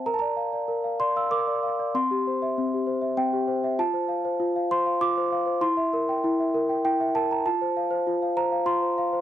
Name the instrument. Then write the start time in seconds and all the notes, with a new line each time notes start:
celesta
0.06 A#4 A#5
0.14 A5
0.19 D5 A#5
0.36 F5
0.53 D5
0.68 A#4
0.84 F5
1.00 D5 C6
1.16 F5 E6
1.31 A#4 D6
1.47 D5
1.63 F5
1.79 D5
1.94 C4 C6
2.11 G4
2.27 C5
2.42 E5
2.58 C4
2.74 G4
2.87 C5
3.01 E5
3.17 C4 G5
3.33 G4
3.48 C5
3.64 E5
3.79 F4 A5
3.94 C5
4.08 F5
4.25 C5
4.40 F4
4.56 F5
4.71 C5 C6
4.86 F5
5.01 F4 D6
5.17 C5
5.32 F5
5.46 C5
5.61 E4 C6
5.77 E5
5.93 A#4
6.09 G5
6.24 E4
6.40 E5
6.54 A#4
6.69 G5
6.85 E4 G5
7.00 E5
7.15 A#4 A5
7.30 G5 A#5
7.46 F4 A5
7.62 C5
7.77 F5
7.91 C5
8.07 F4
8.22 F5
8.37 C5 A#5
8.52 F5
8.66 F4 C6
8.82 C5
8.98 F5
9.13 C5